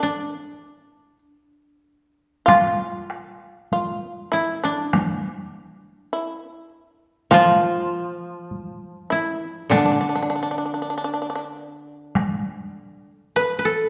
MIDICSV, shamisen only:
0, 0, Header, 1, 2, 480
1, 0, Start_track
1, 0, Tempo, 1229508
1, 7, Time_signature, 2, 2, 24, 8
1, 1928, Tempo, 1192843
1, 3848, Tempo, 1217039
1, 5497, End_track
2, 0, Start_track
2, 0, Title_t, "Shamisen"
2, 0, Program_c, 0, 106
2, 0, Note_on_c, 0, 62, 43
2, 462, Note_off_c, 0, 62, 0
2, 960, Note_on_c, 0, 65, 69
2, 1433, Note_off_c, 0, 65, 0
2, 1455, Note_on_c, 0, 65, 62
2, 1677, Note_off_c, 0, 65, 0
2, 1685, Note_on_c, 0, 64, 61
2, 1798, Note_off_c, 0, 64, 0
2, 1810, Note_on_c, 0, 62, 65
2, 2393, Note_off_c, 0, 62, 0
2, 2407, Note_on_c, 0, 64, 52
2, 2631, Note_off_c, 0, 64, 0
2, 2882, Note_on_c, 0, 65, 82
2, 3589, Note_off_c, 0, 65, 0
2, 3603, Note_on_c, 0, 64, 59
2, 3831, Note_off_c, 0, 64, 0
2, 3848, Note_on_c, 0, 62, 53
2, 3870, Note_off_c, 0, 62, 0
2, 3875, Note_on_c, 0, 62, 40
2, 3901, Note_off_c, 0, 62, 0
2, 3905, Note_on_c, 0, 62, 39
2, 3925, Note_off_c, 0, 62, 0
2, 3930, Note_on_c, 0, 62, 35
2, 3960, Note_off_c, 0, 62, 0
2, 3965, Note_on_c, 0, 62, 38
2, 3993, Note_off_c, 0, 62, 0
2, 3999, Note_on_c, 0, 62, 30
2, 4019, Note_off_c, 0, 62, 0
2, 4024, Note_on_c, 0, 62, 41
2, 4047, Note_off_c, 0, 62, 0
2, 4051, Note_on_c, 0, 62, 28
2, 4075, Note_off_c, 0, 62, 0
2, 4080, Note_on_c, 0, 62, 37
2, 4098, Note_off_c, 0, 62, 0
2, 4103, Note_on_c, 0, 62, 29
2, 4126, Note_off_c, 0, 62, 0
2, 4131, Note_on_c, 0, 62, 35
2, 4159, Note_off_c, 0, 62, 0
2, 4164, Note_on_c, 0, 62, 30
2, 4186, Note_off_c, 0, 62, 0
2, 4191, Note_on_c, 0, 62, 34
2, 4216, Note_off_c, 0, 62, 0
2, 4221, Note_on_c, 0, 62, 26
2, 4249, Note_off_c, 0, 62, 0
2, 4254, Note_on_c, 0, 62, 29
2, 4281, Note_off_c, 0, 62, 0
2, 4286, Note_on_c, 0, 62, 30
2, 4313, Note_off_c, 0, 62, 0
2, 4317, Note_on_c, 0, 62, 30
2, 4343, Note_off_c, 0, 62, 0
2, 4348, Note_on_c, 0, 62, 30
2, 4369, Note_off_c, 0, 62, 0
2, 4374, Note_on_c, 0, 62, 38
2, 4404, Note_off_c, 0, 62, 0
2, 4411, Note_on_c, 0, 62, 29
2, 4437, Note_off_c, 0, 62, 0
2, 4443, Note_on_c, 0, 62, 31
2, 4468, Note_off_c, 0, 62, 0
2, 4474, Note_on_c, 0, 62, 31
2, 4492, Note_off_c, 0, 62, 0
2, 4497, Note_on_c, 0, 62, 38
2, 4524, Note_off_c, 0, 62, 0
2, 5289, Note_on_c, 0, 71, 65
2, 5497, Note_off_c, 0, 71, 0
2, 5497, End_track
0, 0, End_of_file